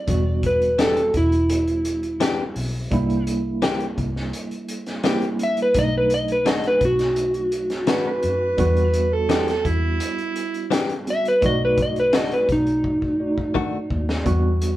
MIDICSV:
0, 0, Header, 1, 7, 480
1, 0, Start_track
1, 0, Key_signature, 1, "minor"
1, 0, Tempo, 709220
1, 55, Time_signature, 4, 2, 24, 8
1, 9994, End_track
2, 0, Start_track
2, 0, Title_t, "Electric slide guitar"
2, 0, Program_c, 0, 29
2, 0, Note_on_c, 0, 74, 80
2, 287, Note_off_c, 0, 74, 0
2, 314, Note_on_c, 0, 71, 68
2, 538, Note_off_c, 0, 71, 0
2, 549, Note_on_c, 0, 69, 88
2, 775, Note_off_c, 0, 69, 0
2, 792, Note_on_c, 0, 64, 78
2, 2196, Note_off_c, 0, 64, 0
2, 3678, Note_on_c, 0, 76, 97
2, 3784, Note_off_c, 0, 76, 0
2, 3806, Note_on_c, 0, 71, 83
2, 3906, Note_off_c, 0, 71, 0
2, 3917, Note_on_c, 0, 75, 98
2, 4024, Note_off_c, 0, 75, 0
2, 4044, Note_on_c, 0, 71, 71
2, 4145, Note_off_c, 0, 71, 0
2, 4156, Note_on_c, 0, 75, 81
2, 4263, Note_off_c, 0, 75, 0
2, 4278, Note_on_c, 0, 71, 71
2, 4381, Note_off_c, 0, 71, 0
2, 4392, Note_on_c, 0, 75, 81
2, 4501, Note_off_c, 0, 75, 0
2, 4518, Note_on_c, 0, 71, 85
2, 4621, Note_off_c, 0, 71, 0
2, 4636, Note_on_c, 0, 66, 77
2, 6038, Note_off_c, 0, 66, 0
2, 7515, Note_on_c, 0, 76, 96
2, 7623, Note_off_c, 0, 76, 0
2, 7636, Note_on_c, 0, 71, 85
2, 7741, Note_off_c, 0, 71, 0
2, 7754, Note_on_c, 0, 75, 99
2, 7862, Note_off_c, 0, 75, 0
2, 7883, Note_on_c, 0, 71, 73
2, 7984, Note_off_c, 0, 71, 0
2, 8003, Note_on_c, 0, 75, 69
2, 8107, Note_off_c, 0, 75, 0
2, 8119, Note_on_c, 0, 71, 77
2, 8222, Note_off_c, 0, 71, 0
2, 8233, Note_on_c, 0, 75, 74
2, 8342, Note_off_c, 0, 75, 0
2, 8348, Note_on_c, 0, 71, 71
2, 8457, Note_off_c, 0, 71, 0
2, 8476, Note_on_c, 0, 63, 82
2, 9637, Note_off_c, 0, 63, 0
2, 9994, End_track
3, 0, Start_track
3, 0, Title_t, "Harmonica"
3, 0, Program_c, 1, 22
3, 5344, Note_on_c, 1, 71, 91
3, 5452, Note_off_c, 1, 71, 0
3, 5465, Note_on_c, 1, 71, 89
3, 6181, Note_on_c, 1, 69, 69
3, 6191, Note_off_c, 1, 71, 0
3, 6411, Note_off_c, 1, 69, 0
3, 6424, Note_on_c, 1, 69, 82
3, 6547, Note_on_c, 1, 64, 89
3, 6557, Note_off_c, 1, 69, 0
3, 7357, Note_off_c, 1, 64, 0
3, 9994, End_track
4, 0, Start_track
4, 0, Title_t, "Tine electric piano"
4, 0, Program_c, 2, 4
4, 46, Note_on_c, 2, 55, 63
4, 50, Note_on_c, 2, 59, 57
4, 57, Note_on_c, 2, 62, 60
4, 66, Note_on_c, 2, 66, 71
4, 1943, Note_off_c, 2, 55, 0
4, 1945, Note_off_c, 2, 59, 0
4, 1948, Note_off_c, 2, 62, 0
4, 1952, Note_off_c, 2, 66, 0
4, 1968, Note_on_c, 2, 55, 76
4, 1973, Note_on_c, 2, 58, 67
4, 1981, Note_on_c, 2, 62, 69
4, 1985, Note_on_c, 2, 64, 80
4, 3383, Note_off_c, 2, 55, 0
4, 3386, Note_off_c, 2, 58, 0
4, 3390, Note_off_c, 2, 62, 0
4, 3392, Note_off_c, 2, 64, 0
4, 3404, Note_on_c, 2, 55, 59
4, 3408, Note_on_c, 2, 58, 50
4, 3413, Note_on_c, 2, 62, 51
4, 3415, Note_on_c, 2, 64, 64
4, 3886, Note_on_c, 2, 54, 64
4, 3889, Note_off_c, 2, 55, 0
4, 3889, Note_off_c, 2, 62, 0
4, 3890, Note_on_c, 2, 57, 59
4, 3891, Note_off_c, 2, 58, 0
4, 3894, Note_off_c, 2, 64, 0
4, 3897, Note_on_c, 2, 62, 61
4, 3902, Note_on_c, 2, 63, 69
4, 5783, Note_off_c, 2, 54, 0
4, 5785, Note_off_c, 2, 57, 0
4, 5788, Note_off_c, 2, 62, 0
4, 5791, Note_off_c, 2, 63, 0
4, 5802, Note_on_c, 2, 55, 75
4, 5810, Note_on_c, 2, 59, 75
4, 5810, Note_on_c, 2, 62, 74
4, 5817, Note_on_c, 2, 66, 85
4, 7461, Note_off_c, 2, 55, 0
4, 7465, Note_off_c, 2, 59, 0
4, 7465, Note_off_c, 2, 62, 0
4, 7468, Note_off_c, 2, 66, 0
4, 7494, Note_on_c, 2, 55, 41
4, 7494, Note_on_c, 2, 59, 38
4, 7498, Note_on_c, 2, 62, 35
4, 7500, Note_on_c, 2, 66, 46
4, 7722, Note_on_c, 2, 57, 61
4, 7725, Note_on_c, 2, 74, 58
4, 7730, Note_on_c, 2, 63, 57
4, 7731, Note_off_c, 2, 66, 0
4, 7734, Note_off_c, 2, 55, 0
4, 7734, Note_off_c, 2, 59, 0
4, 7736, Note_off_c, 2, 62, 0
4, 7739, Note_on_c, 2, 66, 72
4, 8904, Note_off_c, 2, 57, 0
4, 8905, Note_off_c, 2, 74, 0
4, 8908, Note_off_c, 2, 63, 0
4, 8912, Note_off_c, 2, 66, 0
4, 8932, Note_on_c, 2, 57, 40
4, 8934, Note_on_c, 2, 74, 37
4, 8937, Note_on_c, 2, 63, 36
4, 8938, Note_on_c, 2, 66, 44
4, 9637, Note_on_c, 2, 55, 73
4, 9644, Note_on_c, 2, 59, 73
4, 9646, Note_off_c, 2, 66, 0
4, 9652, Note_off_c, 2, 57, 0
4, 9653, Note_on_c, 2, 62, 67
4, 9654, Note_off_c, 2, 74, 0
4, 9655, Note_off_c, 2, 63, 0
4, 9655, Note_on_c, 2, 66, 88
4, 9994, Note_off_c, 2, 55, 0
4, 9994, Note_off_c, 2, 59, 0
4, 9994, Note_off_c, 2, 62, 0
4, 9994, Note_off_c, 2, 66, 0
4, 9994, End_track
5, 0, Start_track
5, 0, Title_t, "Clean electric guitar"
5, 0, Program_c, 3, 27
5, 532, Note_on_c, 3, 52, 67
5, 536, Note_on_c, 3, 59, 65
5, 542, Note_on_c, 3, 62, 68
5, 543, Note_on_c, 3, 67, 73
5, 679, Note_off_c, 3, 52, 0
5, 681, Note_off_c, 3, 59, 0
5, 684, Note_off_c, 3, 62, 0
5, 685, Note_off_c, 3, 67, 0
5, 1491, Note_on_c, 3, 52, 81
5, 1498, Note_on_c, 3, 59, 83
5, 1499, Note_on_c, 3, 62, 80
5, 1503, Note_on_c, 3, 67, 94
5, 1638, Note_off_c, 3, 52, 0
5, 1641, Note_off_c, 3, 59, 0
5, 1642, Note_off_c, 3, 62, 0
5, 1644, Note_off_c, 3, 67, 0
5, 2451, Note_on_c, 3, 52, 66
5, 2455, Note_on_c, 3, 58, 78
5, 2458, Note_on_c, 3, 60, 86
5, 2460, Note_on_c, 3, 67, 81
5, 2598, Note_off_c, 3, 52, 0
5, 2600, Note_off_c, 3, 58, 0
5, 2601, Note_off_c, 3, 60, 0
5, 2603, Note_off_c, 3, 67, 0
5, 3411, Note_on_c, 3, 52, 78
5, 3413, Note_on_c, 3, 58, 80
5, 3420, Note_on_c, 3, 60, 92
5, 3422, Note_on_c, 3, 67, 96
5, 3558, Note_off_c, 3, 52, 0
5, 3559, Note_off_c, 3, 58, 0
5, 3562, Note_off_c, 3, 60, 0
5, 3563, Note_off_c, 3, 67, 0
5, 4369, Note_on_c, 3, 51, 67
5, 4373, Note_on_c, 3, 57, 69
5, 4376, Note_on_c, 3, 62, 79
5, 4380, Note_on_c, 3, 66, 82
5, 4517, Note_off_c, 3, 51, 0
5, 4519, Note_off_c, 3, 57, 0
5, 4520, Note_off_c, 3, 62, 0
5, 4522, Note_off_c, 3, 66, 0
5, 5329, Note_on_c, 3, 51, 89
5, 5334, Note_on_c, 3, 57, 97
5, 5338, Note_on_c, 3, 62, 98
5, 5344, Note_on_c, 3, 66, 89
5, 5476, Note_off_c, 3, 51, 0
5, 5479, Note_off_c, 3, 57, 0
5, 5481, Note_off_c, 3, 62, 0
5, 5484, Note_off_c, 3, 66, 0
5, 6289, Note_on_c, 3, 52, 89
5, 6293, Note_on_c, 3, 59, 81
5, 6298, Note_on_c, 3, 62, 85
5, 6302, Note_on_c, 3, 67, 90
5, 6437, Note_off_c, 3, 52, 0
5, 6439, Note_off_c, 3, 59, 0
5, 6441, Note_off_c, 3, 62, 0
5, 6443, Note_off_c, 3, 67, 0
5, 7246, Note_on_c, 3, 52, 80
5, 7250, Note_on_c, 3, 59, 92
5, 7254, Note_on_c, 3, 62, 86
5, 7259, Note_on_c, 3, 67, 100
5, 7395, Note_off_c, 3, 52, 0
5, 7397, Note_off_c, 3, 59, 0
5, 7399, Note_off_c, 3, 62, 0
5, 7402, Note_off_c, 3, 67, 0
5, 8211, Note_on_c, 3, 51, 69
5, 8214, Note_on_c, 3, 57, 73
5, 8218, Note_on_c, 3, 62, 78
5, 8221, Note_on_c, 3, 66, 76
5, 8358, Note_off_c, 3, 51, 0
5, 8359, Note_off_c, 3, 57, 0
5, 8361, Note_off_c, 3, 62, 0
5, 8363, Note_off_c, 3, 66, 0
5, 9167, Note_on_c, 3, 51, 85
5, 9170, Note_on_c, 3, 57, 83
5, 9173, Note_on_c, 3, 62, 95
5, 9178, Note_on_c, 3, 66, 95
5, 9316, Note_off_c, 3, 51, 0
5, 9317, Note_off_c, 3, 57, 0
5, 9319, Note_off_c, 3, 62, 0
5, 9321, Note_off_c, 3, 66, 0
5, 9994, End_track
6, 0, Start_track
6, 0, Title_t, "Fingered electric bass"
6, 0, Program_c, 4, 33
6, 52, Note_on_c, 4, 28, 95
6, 746, Note_off_c, 4, 28, 0
6, 774, Note_on_c, 4, 28, 77
6, 1707, Note_off_c, 4, 28, 0
6, 1735, Note_on_c, 4, 35, 78
6, 1957, Note_off_c, 4, 35, 0
6, 1974, Note_on_c, 4, 36, 88
6, 2667, Note_off_c, 4, 36, 0
6, 2691, Note_on_c, 4, 36, 82
6, 2915, Note_off_c, 4, 36, 0
6, 3891, Note_on_c, 4, 35, 95
6, 4585, Note_off_c, 4, 35, 0
6, 4610, Note_on_c, 4, 35, 79
6, 5544, Note_off_c, 4, 35, 0
6, 5575, Note_on_c, 4, 42, 82
6, 5797, Note_off_c, 4, 42, 0
6, 5808, Note_on_c, 4, 40, 94
6, 6504, Note_off_c, 4, 40, 0
6, 6532, Note_on_c, 4, 40, 79
6, 6755, Note_off_c, 4, 40, 0
6, 7734, Note_on_c, 4, 35, 99
6, 8426, Note_off_c, 4, 35, 0
6, 8455, Note_on_c, 4, 35, 73
6, 9387, Note_off_c, 4, 35, 0
6, 9412, Note_on_c, 4, 39, 72
6, 9635, Note_off_c, 4, 39, 0
6, 9652, Note_on_c, 4, 40, 89
6, 9994, Note_off_c, 4, 40, 0
6, 9994, End_track
7, 0, Start_track
7, 0, Title_t, "Drums"
7, 51, Note_on_c, 9, 42, 75
7, 53, Note_on_c, 9, 36, 100
7, 118, Note_off_c, 9, 42, 0
7, 120, Note_off_c, 9, 36, 0
7, 291, Note_on_c, 9, 42, 61
7, 293, Note_on_c, 9, 36, 75
7, 359, Note_off_c, 9, 42, 0
7, 360, Note_off_c, 9, 36, 0
7, 417, Note_on_c, 9, 42, 34
7, 484, Note_off_c, 9, 42, 0
7, 532, Note_on_c, 9, 42, 84
7, 535, Note_on_c, 9, 38, 108
7, 600, Note_off_c, 9, 42, 0
7, 602, Note_off_c, 9, 38, 0
7, 654, Note_on_c, 9, 42, 39
7, 721, Note_off_c, 9, 42, 0
7, 770, Note_on_c, 9, 42, 56
7, 772, Note_on_c, 9, 36, 63
7, 838, Note_off_c, 9, 42, 0
7, 840, Note_off_c, 9, 36, 0
7, 894, Note_on_c, 9, 42, 38
7, 962, Note_off_c, 9, 42, 0
7, 1012, Note_on_c, 9, 42, 82
7, 1079, Note_off_c, 9, 42, 0
7, 1133, Note_on_c, 9, 42, 36
7, 1201, Note_off_c, 9, 42, 0
7, 1251, Note_on_c, 9, 42, 63
7, 1318, Note_off_c, 9, 42, 0
7, 1373, Note_on_c, 9, 42, 36
7, 1441, Note_off_c, 9, 42, 0
7, 1492, Note_on_c, 9, 42, 92
7, 1495, Note_on_c, 9, 38, 109
7, 1560, Note_off_c, 9, 42, 0
7, 1562, Note_off_c, 9, 38, 0
7, 1731, Note_on_c, 9, 46, 64
7, 1798, Note_off_c, 9, 46, 0
7, 1972, Note_on_c, 9, 42, 74
7, 1974, Note_on_c, 9, 36, 100
7, 2040, Note_off_c, 9, 42, 0
7, 2041, Note_off_c, 9, 36, 0
7, 2096, Note_on_c, 9, 42, 31
7, 2164, Note_off_c, 9, 42, 0
7, 2212, Note_on_c, 9, 42, 61
7, 2280, Note_off_c, 9, 42, 0
7, 2450, Note_on_c, 9, 42, 77
7, 2452, Note_on_c, 9, 38, 114
7, 2517, Note_off_c, 9, 42, 0
7, 2520, Note_off_c, 9, 38, 0
7, 2573, Note_on_c, 9, 42, 35
7, 2641, Note_off_c, 9, 42, 0
7, 2691, Note_on_c, 9, 42, 50
7, 2692, Note_on_c, 9, 36, 70
7, 2759, Note_off_c, 9, 42, 0
7, 2760, Note_off_c, 9, 36, 0
7, 2817, Note_on_c, 9, 38, 29
7, 2885, Note_off_c, 9, 38, 0
7, 2932, Note_on_c, 9, 42, 65
7, 3000, Note_off_c, 9, 42, 0
7, 3053, Note_on_c, 9, 42, 33
7, 3121, Note_off_c, 9, 42, 0
7, 3170, Note_on_c, 9, 42, 56
7, 3238, Note_off_c, 9, 42, 0
7, 3292, Note_on_c, 9, 42, 32
7, 3294, Note_on_c, 9, 38, 28
7, 3359, Note_off_c, 9, 42, 0
7, 3362, Note_off_c, 9, 38, 0
7, 3407, Note_on_c, 9, 42, 72
7, 3410, Note_on_c, 9, 38, 110
7, 3475, Note_off_c, 9, 42, 0
7, 3477, Note_off_c, 9, 38, 0
7, 3531, Note_on_c, 9, 42, 34
7, 3599, Note_off_c, 9, 42, 0
7, 3650, Note_on_c, 9, 42, 54
7, 3717, Note_off_c, 9, 42, 0
7, 3769, Note_on_c, 9, 42, 36
7, 3837, Note_off_c, 9, 42, 0
7, 3887, Note_on_c, 9, 42, 81
7, 3890, Note_on_c, 9, 36, 89
7, 3955, Note_off_c, 9, 42, 0
7, 3957, Note_off_c, 9, 36, 0
7, 4128, Note_on_c, 9, 42, 60
7, 4195, Note_off_c, 9, 42, 0
7, 4251, Note_on_c, 9, 42, 37
7, 4319, Note_off_c, 9, 42, 0
7, 4370, Note_on_c, 9, 42, 75
7, 4373, Note_on_c, 9, 38, 108
7, 4438, Note_off_c, 9, 42, 0
7, 4440, Note_off_c, 9, 38, 0
7, 4491, Note_on_c, 9, 42, 38
7, 4558, Note_off_c, 9, 42, 0
7, 4607, Note_on_c, 9, 42, 58
7, 4609, Note_on_c, 9, 36, 74
7, 4675, Note_off_c, 9, 42, 0
7, 4677, Note_off_c, 9, 36, 0
7, 4730, Note_on_c, 9, 42, 38
7, 4733, Note_on_c, 9, 38, 35
7, 4798, Note_off_c, 9, 42, 0
7, 4801, Note_off_c, 9, 38, 0
7, 4846, Note_on_c, 9, 42, 73
7, 4914, Note_off_c, 9, 42, 0
7, 4968, Note_on_c, 9, 42, 35
7, 5035, Note_off_c, 9, 42, 0
7, 5088, Note_on_c, 9, 42, 63
7, 5156, Note_off_c, 9, 42, 0
7, 5210, Note_on_c, 9, 42, 34
7, 5213, Note_on_c, 9, 38, 28
7, 5278, Note_off_c, 9, 42, 0
7, 5280, Note_off_c, 9, 38, 0
7, 5325, Note_on_c, 9, 42, 88
7, 5328, Note_on_c, 9, 38, 115
7, 5393, Note_off_c, 9, 42, 0
7, 5396, Note_off_c, 9, 38, 0
7, 5567, Note_on_c, 9, 42, 55
7, 5635, Note_off_c, 9, 42, 0
7, 5806, Note_on_c, 9, 42, 75
7, 5809, Note_on_c, 9, 36, 102
7, 5874, Note_off_c, 9, 42, 0
7, 5877, Note_off_c, 9, 36, 0
7, 5932, Note_on_c, 9, 42, 36
7, 6000, Note_off_c, 9, 42, 0
7, 6047, Note_on_c, 9, 42, 63
7, 6115, Note_off_c, 9, 42, 0
7, 6290, Note_on_c, 9, 42, 75
7, 6293, Note_on_c, 9, 38, 101
7, 6358, Note_off_c, 9, 42, 0
7, 6361, Note_off_c, 9, 38, 0
7, 6414, Note_on_c, 9, 42, 37
7, 6417, Note_on_c, 9, 38, 33
7, 6482, Note_off_c, 9, 42, 0
7, 6484, Note_off_c, 9, 38, 0
7, 6531, Note_on_c, 9, 36, 67
7, 6531, Note_on_c, 9, 42, 51
7, 6599, Note_off_c, 9, 36, 0
7, 6599, Note_off_c, 9, 42, 0
7, 6769, Note_on_c, 9, 42, 76
7, 6836, Note_off_c, 9, 42, 0
7, 6892, Note_on_c, 9, 42, 31
7, 6960, Note_off_c, 9, 42, 0
7, 7009, Note_on_c, 9, 42, 59
7, 7077, Note_off_c, 9, 42, 0
7, 7134, Note_on_c, 9, 42, 31
7, 7202, Note_off_c, 9, 42, 0
7, 7252, Note_on_c, 9, 42, 82
7, 7255, Note_on_c, 9, 38, 114
7, 7320, Note_off_c, 9, 42, 0
7, 7322, Note_off_c, 9, 38, 0
7, 7372, Note_on_c, 9, 42, 35
7, 7440, Note_off_c, 9, 42, 0
7, 7492, Note_on_c, 9, 42, 46
7, 7560, Note_off_c, 9, 42, 0
7, 7616, Note_on_c, 9, 42, 37
7, 7683, Note_off_c, 9, 42, 0
7, 7729, Note_on_c, 9, 42, 74
7, 7731, Note_on_c, 9, 36, 109
7, 7797, Note_off_c, 9, 42, 0
7, 7799, Note_off_c, 9, 36, 0
7, 7970, Note_on_c, 9, 42, 60
7, 7971, Note_on_c, 9, 36, 82
7, 8037, Note_off_c, 9, 42, 0
7, 8038, Note_off_c, 9, 36, 0
7, 8095, Note_on_c, 9, 42, 33
7, 8162, Note_off_c, 9, 42, 0
7, 8208, Note_on_c, 9, 42, 80
7, 8211, Note_on_c, 9, 38, 110
7, 8276, Note_off_c, 9, 42, 0
7, 8278, Note_off_c, 9, 38, 0
7, 8334, Note_on_c, 9, 42, 35
7, 8402, Note_off_c, 9, 42, 0
7, 8451, Note_on_c, 9, 42, 56
7, 8452, Note_on_c, 9, 36, 68
7, 8519, Note_off_c, 9, 36, 0
7, 8519, Note_off_c, 9, 42, 0
7, 8572, Note_on_c, 9, 42, 37
7, 8640, Note_off_c, 9, 42, 0
7, 8691, Note_on_c, 9, 36, 54
7, 8758, Note_off_c, 9, 36, 0
7, 8813, Note_on_c, 9, 36, 46
7, 8881, Note_off_c, 9, 36, 0
7, 9053, Note_on_c, 9, 36, 57
7, 9121, Note_off_c, 9, 36, 0
7, 9172, Note_on_c, 9, 36, 76
7, 9239, Note_off_c, 9, 36, 0
7, 9411, Note_on_c, 9, 36, 71
7, 9479, Note_off_c, 9, 36, 0
7, 9536, Note_on_c, 9, 38, 86
7, 9604, Note_off_c, 9, 38, 0
7, 9650, Note_on_c, 9, 36, 103
7, 9650, Note_on_c, 9, 42, 77
7, 9718, Note_off_c, 9, 36, 0
7, 9718, Note_off_c, 9, 42, 0
7, 9891, Note_on_c, 9, 42, 62
7, 9959, Note_off_c, 9, 42, 0
7, 9994, End_track
0, 0, End_of_file